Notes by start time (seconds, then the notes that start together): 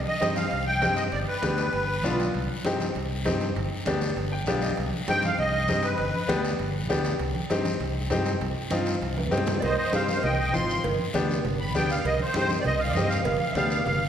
0.07 D#5, high conga
0.21 G2 C4 D#4 G4, high conga, high timbale, short guiro
0.36 F5, high conga, high timbale, short guiro
0.51 C2, high conga, high timbale, long guiro
0.67 G5
0.82 G2 C4 D#4 G4, high conga, high timbale, short guiro
0.96 D#5, high timbale, short guiro
1.12 G1 D5, high conga, high timbale, long guiro
1.28 B4
1.42 D2 B3 D4 G4, high conga, high timbale, short guiro
1.58 high timbale, short guiro
1.73 G1, high conga, high timbale, long guiro
2.03 B1 B3 D4 F4, high conga, high timbale, low timbale, short guiro
2.20 high timbale, short guiro
2.34 C2, high conga, high timbale, long guiro
2.65 G2 C4 D#4 G4, high conga, high timbale, short guiro
2.80 high conga, high timbale, short guiro
2.95 C2, high conga, high timbale, long guiro
3.25 G2 C4 D#4 G4, high conga, high timbale, low timbale, short guiro
3.40 high timbale, short guiro
3.55 G1, high conga, high timbale, long guiro
3.85 D2 B3 D4 G4, high conga, high timbale, short guiro
4.01 high conga, high timbale, short guiro
4.16 G1, high conga, high timbale, long guiro
4.32 G5
4.46 B1 B3 D4 G4 F5, high conga, high timbale, low timbale, short guiro
4.62 D#5, high timbale, short guiro
4.76 C2, high conga, high timbale, long guiro
4.93 high conga
5.07 G2 C4 D#4 G4 G5, high conga, high timbale, short guiro
5.22 F5, high conga, high timbale, short guiro
5.37 C2 D#5, high conga, high timbale, long guiro
5.68 G2 C4 D#4 G4, high conga, high timbale, short guiro
5.82 B4, high timbale, short guiro
5.98 G1, high conga, high timbale, long guiro
6.14 high conga
6.28 D2 B3 D4 G4, high conga, high timbale, short guiro
6.45 high timbale, short guiro
6.59 G1, high conga, high timbale, long guiro
6.89 D2 B3 D4 G4, high conga, high timbale, short guiro
7.05 high timbale, short guiro
7.19 C2, high conga, high timbale, long guiro
7.35 high conga
7.50 G2 C4 D#4 G4, high conga, high timbale, short guiro
7.65 high conga, high timbale, short guiro
7.80 C2, high conga, high timbale, long guiro
8.10 G2 C4 D#4 G4, high conga, high timbale, low timbale, short guiro
8.26 high timbale, short guiro
8.41 C2, high conga, high timbale, long guiro
8.71 G2 C4 D#4 F4, high conga, high timbale, short guiro
8.86 high timbale, short guiro
9.01 C2, high conga, high timbale, long guiro
9.17 high conga, high timbale
9.31 G2 C4 D#4 G4, low timbale, short guiro
9.38 low conga
9.46 low conga, low timbale, short guiro
9.59 D5, cowbell, long guiro
9.63 C2 C5 D#5, high conga
9.77 C5 D#5
9.92 G2 C4 D#4 G4 C5 F5, high conga, short guiro
10.08 C5 F5, high conga, short guiro
10.23 C2 D#5 G5, cowbell, high conga, low conga, long guiro
10.39 D#5 G5
10.53 G#1 C4 D#4 F4 C6, high conga, short guiro
10.69 short guiro
10.84 G1, cowbell, high conga, low conga, long guiro
10.99 high conga
11.14 D2 B3 D4 G4, high conga, short guiro
11.29 high conga, short guiro
11.45 G1, cowbell, high conga, low conga, long guiro
11.61 B5
11.74 D2 B3 D4 G4 G5, high conga, short guiro
11.90 F5, short guiro
12.05 C2 D#5, cowbell, high conga, long guiro
12.20 C5, high conga
12.34 G2 C4 D#4 G4 C5, high conga, short guiro
12.49 high conga, short guiro
12.61 D5, high conga, low conga, long guiro
12.65 C2 D#5, cowbell
12.79 F5
12.89 D5
12.94 G2 C4 D#4 G4 D#5, high conga, short guiro
13.09 F5, short guiro
13.24 G1 F5, cowbell, high conga, low conga, long guiro
13.40 F5, high conga
13.51 D2 E5, high conga
13.56 B3 D4 G4 F5, short guiro
13.70 F5, short guiro
13.85 G1 F5, cowbell, high conga, low conga, long guiro